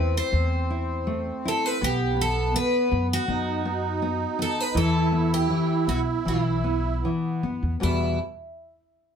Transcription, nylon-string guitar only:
Already playing: E4
0.32 A3
0.70 E4
1.07 A3
1.45 E4
1.81 B3
2.17 B3
2.54 B3
2.91 B3
3.28 B3
3.65 B3
4.02 B3
4.39 B3
4.75 E3
5.12 B3
5.50 E3
5.87 B3
6.25 E3
6.64 B3
7.05 E3
7.43 B3
7.80 E2 B2 G3 B3

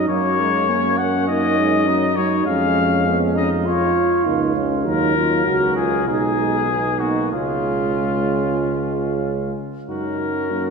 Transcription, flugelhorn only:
Already playing: D#4
0.09 A#3
0.69 C#4
0.99 C#4
1.87 D#4
2.47 C#4
3.07 C#4
3.36 D#4
3.66 F4
5.46 F#4
6.08 D#4
6.70 D#4
7.34 C#4
9.89 F#4
10.20 F#4

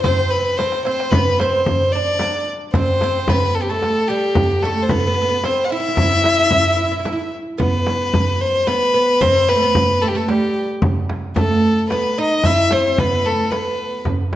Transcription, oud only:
0.05 C4
0.60 C4
0.86 C4
1.15 B3
1.41 C4
1.95 D4
2.21 D4
2.75 C4
3.03 C4
3.30 B3
3.70 A3
4.10 G3
4.65 A3
4.91 B3
5.00 B3
5.07 B3
5.14 B3
5.22 B3
5.29 B3
5.45 C4
5.72 E4
5.80 E4
5.88 E4
5.95 E4
6.02 E4
6.09 E4
6.16 E4
6.24 E4
6.32 E4
6.38 E4
6.46 E4
6.53 E4
6.61 E4
6.70 E4
6.77 E4
6.84 E4
6.92 E4
6.99 E4
7.05 E4
7.13 E4
7.58 B3
8.67 B3
8.94 B3
9.21 C4
9.49 B3
9.55 A3
9.62 B3
10.02 A3
10.15 A3
10.29 G3
11.36 A3
11.92 B3
12.18 D#4
12.46 E4
12.72 C4
13.00 B3
13.25 A3
13.52 B3

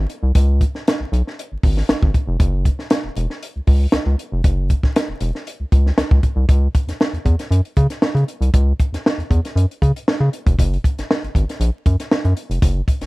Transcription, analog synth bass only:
0.23 C2
0.35 C#2
1.00 B1
1.12 B1
1.52 G#1
1.63 G#1
1.89 G#1
2.02 G#1
2.27 F1
2.40 F#1
3.04 E1
3.17 E1
3.56 C#2
3.67 C#2
3.93 C#2
4.06 C#2
4.32 F1
4.44 F#1
5.08 E1
5.21 E1
5.60 C#2
5.72 C#2
5.98 C#2
6.11 C#2
6.36 C2
6.49 C#2
6.87 E2
7.13 E2
7.25 E2
7.51 F#2
7.77 C#3
8.15 C#3
8.41 C2
8.54 C#2
8.92 E2
9.18 E2
9.30 E2
9.56 F#2
9.82 C#3
10.20 C#3
10.46 F1
10.59 F#1
10.98 G#1
11.23 G#1
11.35 G#1
11.60 A#1
11.86 F#2
12.25 F#2
12.50 F1
12.62 F#1
13.01 G#1

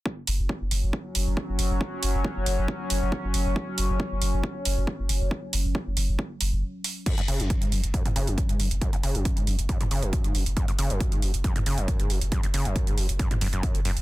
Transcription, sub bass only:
0.27 F#1
0.39 F#1
0.61 F#1
0.71 F#1
0.83 F#1
1.15 F#1
1.27 F#1
1.49 F#1
1.59 F#1
1.70 F#1
2.03 F#1
2.14 F#1
2.36 F#1
2.46 F#1
2.58 F#1
2.90 F#1
3.02 F#1
3.24 F#1
3.34 F#1
3.46 F#1
3.78 F#1
3.89 F#1
4.11 F#1
4.22 F#1
4.33 F#1
4.65 F#1
4.77 F#1
4.99 F#1
5.09 F#1
5.21 F#1
5.53 F#1
5.65 F#1
5.86 F#1
5.97 F#1
6.08 F#1
6.41 F#1
6.52 F#1
7.28 F#1
7.40 F#1
7.62 F#1
7.72 F#1
7.84 F#1
8.16 F#1
8.27 F#1
8.49 F#1
8.60 F#1
8.71 F#1
9.03 F#1
9.15 F#1
9.37 F#1
9.47 F#1
9.59 F#1
9.91 F#1
10.02 F#1
10.24 F#1
10.35 F#1
10.46 F#1
10.79 F#1
10.90 F#1
11.12 F#1
11.22 F#1
11.34 F#1
11.66 F#1
11.78 F#1
11.99 F#1
12.10 F#1
12.21 F#1
12.54 F#1
12.65 F#1
12.87 F#1
12.98 F#1
13.09 F#1
13.41 F#1
13.53 F#1
13.75 F#1
13.85 F#1
13.97 F#1

